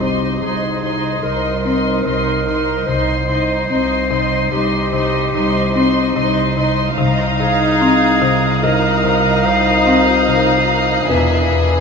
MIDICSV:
0, 0, Header, 1, 13, 480
1, 0, Start_track
1, 0, Tempo, 821918
1, 1683, Time_signature, 5, 2, 24, 8
1, 6892, End_track
2, 0, Start_track
2, 0, Title_t, "Violin section"
2, 0, Program_c, 0, 48
2, 4080, Note_on_c, 0, 87, 39
2, 4560, Note_on_c, 0, 90, 41
2, 5040, Note_on_c, 0, 96, 41
2, 6892, Note_off_c, 0, 87, 0
2, 6892, Note_off_c, 0, 90, 0
2, 6892, Note_off_c, 0, 96, 0
2, 6892, End_track
3, 0, Start_track
3, 0, Title_t, "Violin section"
3, 0, Program_c, 1, 48
3, 5, Note_on_c, 1, 84, 26
3, 231, Note_off_c, 1, 84, 0
3, 238, Note_on_c, 1, 84, 28
3, 471, Note_off_c, 1, 84, 0
3, 478, Note_on_c, 1, 84, 26
3, 716, Note_off_c, 1, 84, 0
3, 724, Note_on_c, 1, 84, 30
3, 957, Note_off_c, 1, 84, 0
3, 964, Note_on_c, 1, 84, 28
3, 1197, Note_off_c, 1, 84, 0
3, 1204, Note_on_c, 1, 84, 30
3, 1439, Note_off_c, 1, 84, 0
3, 1446, Note_on_c, 1, 84, 30
3, 1673, Note_off_c, 1, 84, 0
3, 1680, Note_on_c, 1, 84, 35
3, 1915, Note_off_c, 1, 84, 0
3, 1922, Note_on_c, 1, 84, 30
3, 2150, Note_off_c, 1, 84, 0
3, 2157, Note_on_c, 1, 84, 34
3, 2392, Note_off_c, 1, 84, 0
3, 2399, Note_on_c, 1, 84, 34
3, 2631, Note_off_c, 1, 84, 0
3, 2638, Note_on_c, 1, 84, 34
3, 2875, Note_off_c, 1, 84, 0
3, 2882, Note_on_c, 1, 84, 35
3, 3111, Note_off_c, 1, 84, 0
3, 3118, Note_on_c, 1, 84, 39
3, 3356, Note_off_c, 1, 84, 0
3, 3362, Note_on_c, 1, 84, 42
3, 3593, Note_off_c, 1, 84, 0
3, 3600, Note_on_c, 1, 84, 41
3, 3831, Note_off_c, 1, 84, 0
3, 3838, Note_on_c, 1, 84, 39
3, 4076, Note_off_c, 1, 84, 0
3, 4082, Note_on_c, 1, 82, 52
3, 5019, Note_off_c, 1, 82, 0
3, 5045, Note_on_c, 1, 82, 48
3, 6461, Note_off_c, 1, 82, 0
3, 6488, Note_on_c, 1, 80, 35
3, 6892, Note_off_c, 1, 80, 0
3, 6892, End_track
4, 0, Start_track
4, 0, Title_t, "Violin section"
4, 0, Program_c, 2, 48
4, 1, Note_on_c, 2, 75, 24
4, 237, Note_off_c, 2, 75, 0
4, 247, Note_on_c, 2, 75, 27
4, 480, Note_off_c, 2, 75, 0
4, 488, Note_on_c, 2, 75, 27
4, 719, Note_off_c, 2, 75, 0
4, 726, Note_on_c, 2, 75, 31
4, 960, Note_off_c, 2, 75, 0
4, 966, Note_on_c, 2, 75, 28
4, 1200, Note_off_c, 2, 75, 0
4, 1207, Note_on_c, 2, 75, 28
4, 1440, Note_off_c, 2, 75, 0
4, 1449, Note_on_c, 2, 75, 27
4, 1681, Note_off_c, 2, 75, 0
4, 1689, Note_on_c, 2, 75, 32
4, 1918, Note_off_c, 2, 75, 0
4, 1926, Note_on_c, 2, 75, 28
4, 2156, Note_off_c, 2, 75, 0
4, 2163, Note_on_c, 2, 75, 32
4, 2398, Note_off_c, 2, 75, 0
4, 2406, Note_on_c, 2, 75, 33
4, 2634, Note_off_c, 2, 75, 0
4, 2641, Note_on_c, 2, 75, 37
4, 2869, Note_off_c, 2, 75, 0
4, 2876, Note_on_c, 2, 75, 36
4, 3114, Note_off_c, 2, 75, 0
4, 3121, Note_on_c, 2, 75, 41
4, 3345, Note_off_c, 2, 75, 0
4, 3352, Note_on_c, 2, 75, 37
4, 3588, Note_off_c, 2, 75, 0
4, 3595, Note_on_c, 2, 75, 39
4, 3828, Note_off_c, 2, 75, 0
4, 3835, Note_on_c, 2, 75, 42
4, 4074, Note_off_c, 2, 75, 0
4, 4078, Note_on_c, 2, 77, 46
4, 5017, Note_off_c, 2, 77, 0
4, 5038, Note_on_c, 2, 77, 48
4, 6457, Note_off_c, 2, 77, 0
4, 6482, Note_on_c, 2, 76, 32
4, 6892, Note_off_c, 2, 76, 0
4, 6892, End_track
5, 0, Start_track
5, 0, Title_t, "Synth texture"
5, 0, Program_c, 3, 99
5, 0, Note_on_c, 3, 72, 42
5, 0, Note_on_c, 3, 75, 40
5, 1663, Note_off_c, 3, 72, 0
5, 1663, Note_off_c, 3, 75, 0
5, 1680, Note_on_c, 3, 72, 42
5, 1682, Note_on_c, 3, 75, 45
5, 4058, Note_off_c, 3, 72, 0
5, 4059, Note_off_c, 3, 75, 0
5, 4085, Note_on_c, 3, 75, 47
5, 4088, Note_on_c, 3, 70, 45
5, 4089, Note_on_c, 3, 65, 50
5, 6477, Note_on_c, 3, 71, 47
5, 6478, Note_on_c, 3, 76, 41
5, 6480, Note_on_c, 3, 62, 43
5, 6484, Note_off_c, 3, 75, 0
5, 6486, Note_off_c, 3, 65, 0
5, 6486, Note_off_c, 3, 70, 0
5, 6892, Note_off_c, 3, 62, 0
5, 6892, Note_off_c, 3, 71, 0
5, 6892, Note_off_c, 3, 76, 0
5, 6892, End_track
6, 0, Start_track
6, 0, Title_t, "Felt piano"
6, 0, Program_c, 4, 0
6, 0, Control_c, 4, 64, 127
6, 3, Note_on_c, 4, 72, 24
6, 8, Note_on_c, 4, 60, 21
6, 1420, Note_off_c, 4, 72, 0
6, 1422, Note_off_c, 4, 60, 0
6, 4095, Control_c, 4, 64, 0
6, 4172, Control_c, 4, 64, 127
6, 5041, Note_on_c, 4, 75, 38
6, 6459, Note_off_c, 4, 75, 0
6, 6479, Note_on_c, 4, 59, 21
6, 6479, Note_on_c, 4, 71, 23
6, 6495, Control_c, 4, 64, 0
6, 6609, Control_c, 4, 64, 127
6, 6892, Note_off_c, 4, 59, 0
6, 6892, Note_off_c, 4, 71, 0
6, 6892, End_track
7, 0, Start_track
7, 0, Title_t, "Clarinet"
7, 0, Program_c, 5, 71
7, 0, Note_on_c, 5, 67, 40
7, 245, Note_on_c, 5, 68, 42
7, 254, Note_off_c, 5, 67, 0
7, 716, Note_on_c, 5, 70, 46
7, 725, Note_off_c, 5, 68, 0
7, 1676, Note_on_c, 5, 72, 60
7, 1685, Note_off_c, 5, 70, 0
7, 2635, Note_off_c, 5, 72, 0
7, 2638, Note_on_c, 5, 67, 55
7, 3818, Note_off_c, 5, 67, 0
7, 4321, Note_on_c, 5, 68, 67
7, 5042, Note_on_c, 5, 70, 57
7, 5051, Note_off_c, 5, 68, 0
7, 5522, Note_on_c, 5, 72, 71
7, 5530, Note_off_c, 5, 70, 0
7, 6476, Note_off_c, 5, 72, 0
7, 6479, Note_on_c, 5, 71, 48
7, 6892, Note_off_c, 5, 71, 0
7, 6892, End_track
8, 0, Start_track
8, 0, Title_t, "Viola section"
8, 0, Program_c, 6, 48
8, 3, Note_on_c, 6, 63, 25
8, 236, Note_off_c, 6, 63, 0
8, 243, Note_on_c, 6, 63, 28
8, 478, Note_off_c, 6, 63, 0
8, 485, Note_on_c, 6, 63, 28
8, 715, Note_off_c, 6, 63, 0
8, 722, Note_on_c, 6, 63, 27
8, 955, Note_off_c, 6, 63, 0
8, 962, Note_on_c, 6, 63, 26
8, 1197, Note_off_c, 6, 63, 0
8, 1204, Note_on_c, 6, 63, 32
8, 1435, Note_off_c, 6, 63, 0
8, 1442, Note_on_c, 6, 63, 27
8, 1678, Note_off_c, 6, 63, 0
8, 1684, Note_on_c, 6, 63, 36
8, 1919, Note_off_c, 6, 63, 0
8, 1928, Note_on_c, 6, 63, 30
8, 2153, Note_off_c, 6, 63, 0
8, 2160, Note_on_c, 6, 63, 32
8, 2397, Note_off_c, 6, 63, 0
8, 2402, Note_on_c, 6, 63, 33
8, 2629, Note_off_c, 6, 63, 0
8, 2636, Note_on_c, 6, 63, 35
8, 2870, Note_off_c, 6, 63, 0
8, 2877, Note_on_c, 6, 63, 38
8, 3113, Note_off_c, 6, 63, 0
8, 3120, Note_on_c, 6, 63, 40
8, 3351, Note_off_c, 6, 63, 0
8, 3358, Note_on_c, 6, 63, 37
8, 3593, Note_off_c, 6, 63, 0
8, 3600, Note_on_c, 6, 63, 46
8, 3835, Note_off_c, 6, 63, 0
8, 3842, Note_on_c, 6, 63, 37
8, 4076, Note_off_c, 6, 63, 0
8, 4083, Note_on_c, 6, 63, 50
8, 5020, Note_off_c, 6, 63, 0
8, 5044, Note_on_c, 6, 63, 46
8, 6460, Note_off_c, 6, 63, 0
8, 6482, Note_on_c, 6, 62, 37
8, 6892, Note_off_c, 6, 62, 0
8, 6892, End_track
9, 0, Start_track
9, 0, Title_t, "Marimba"
9, 0, Program_c, 7, 12
9, 3, Note_on_c, 7, 48, 33
9, 147, Note_off_c, 7, 48, 0
9, 248, Note_on_c, 7, 48, 27
9, 391, Note_off_c, 7, 48, 0
9, 483, Note_on_c, 7, 48, 34
9, 627, Note_off_c, 7, 48, 0
9, 726, Note_on_c, 7, 48, 28
9, 869, Note_off_c, 7, 48, 0
9, 965, Note_on_c, 7, 60, 28
9, 1108, Note_off_c, 7, 60, 0
9, 1203, Note_on_c, 7, 48, 39
9, 1347, Note_off_c, 7, 48, 0
9, 1444, Note_on_c, 7, 48, 29
9, 1588, Note_off_c, 7, 48, 0
9, 1686, Note_on_c, 7, 48, 42
9, 1829, Note_off_c, 7, 48, 0
9, 1923, Note_on_c, 7, 48, 30
9, 2067, Note_off_c, 7, 48, 0
9, 2159, Note_on_c, 7, 60, 28
9, 2304, Note_off_c, 7, 60, 0
9, 2397, Note_on_c, 7, 48, 47
9, 2543, Note_off_c, 7, 48, 0
9, 2641, Note_on_c, 7, 48, 38
9, 2785, Note_off_c, 7, 48, 0
9, 2880, Note_on_c, 7, 48, 48
9, 3025, Note_off_c, 7, 48, 0
9, 3123, Note_on_c, 7, 48, 38
9, 3267, Note_off_c, 7, 48, 0
9, 3361, Note_on_c, 7, 60, 39
9, 3506, Note_off_c, 7, 60, 0
9, 3600, Note_on_c, 7, 48, 48
9, 3745, Note_off_c, 7, 48, 0
9, 3838, Note_on_c, 7, 48, 38
9, 3984, Note_off_c, 7, 48, 0
9, 4077, Note_on_c, 7, 48, 55
9, 4223, Note_off_c, 7, 48, 0
9, 4322, Note_on_c, 7, 48, 41
9, 4467, Note_off_c, 7, 48, 0
9, 4562, Note_on_c, 7, 60, 39
9, 4706, Note_off_c, 7, 60, 0
9, 4802, Note_on_c, 7, 48, 59
9, 4946, Note_off_c, 7, 48, 0
9, 5045, Note_on_c, 7, 48, 44
9, 5188, Note_off_c, 7, 48, 0
9, 5283, Note_on_c, 7, 48, 53
9, 5427, Note_off_c, 7, 48, 0
9, 5523, Note_on_c, 7, 48, 42
9, 5667, Note_off_c, 7, 48, 0
9, 5759, Note_on_c, 7, 60, 35
9, 5905, Note_off_c, 7, 60, 0
9, 6003, Note_on_c, 7, 48, 46
9, 6147, Note_off_c, 7, 48, 0
9, 6244, Note_on_c, 7, 48, 30
9, 6388, Note_off_c, 7, 48, 0
9, 6485, Note_on_c, 7, 40, 39
9, 6628, Note_off_c, 7, 40, 0
9, 6722, Note_on_c, 7, 40, 28
9, 6867, Note_off_c, 7, 40, 0
9, 6892, End_track
10, 0, Start_track
10, 0, Title_t, "Cello section"
10, 0, Program_c, 8, 48
10, 0, Note_on_c, 8, 36, 32
10, 186, Note_off_c, 8, 36, 0
10, 244, Note_on_c, 8, 36, 32
10, 667, Note_off_c, 8, 36, 0
10, 723, Note_on_c, 8, 36, 37
10, 1146, Note_off_c, 8, 36, 0
10, 1203, Note_on_c, 8, 36, 35
10, 1627, Note_off_c, 8, 36, 0
10, 1679, Note_on_c, 8, 36, 38
10, 2105, Note_off_c, 8, 36, 0
10, 2164, Note_on_c, 8, 36, 41
10, 2587, Note_off_c, 8, 36, 0
10, 2640, Note_on_c, 8, 36, 46
10, 3065, Note_off_c, 8, 36, 0
10, 3121, Note_on_c, 8, 36, 45
10, 3546, Note_off_c, 8, 36, 0
10, 3601, Note_on_c, 8, 36, 49
10, 4025, Note_off_c, 8, 36, 0
10, 4084, Note_on_c, 8, 36, 53
10, 6460, Note_off_c, 8, 36, 0
10, 6482, Note_on_c, 8, 40, 35
10, 6892, Note_off_c, 8, 40, 0
10, 6892, End_track
11, 0, Start_track
11, 0, Title_t, "Double bass section"
11, 0, Program_c, 10, 48
11, 1686, Note_on_c, 10, 36, 36
11, 2093, Note_off_c, 10, 36, 0
11, 4084, Note_on_c, 10, 36, 50
11, 4541, Note_off_c, 10, 36, 0
11, 6487, Note_on_c, 10, 28, 33
11, 6892, Note_off_c, 10, 28, 0
11, 6892, End_track
12, 0, Start_track
12, 0, Title_t, "Cymbal swell"
12, 0, Program_c, 11, 119
12, 6484, Note_on_c, 11, 60, 36
12, 6892, Note_off_c, 11, 60, 0
12, 6892, End_track
13, 0, Start_track
13, 0, Title_t, "Impact"
13, 0, Program_c, 12, 103
13, 0, Note_on_c, 12, 60, 30
13, 1684, Note_off_c, 12, 60, 0
13, 6892, End_track
0, 0, End_of_file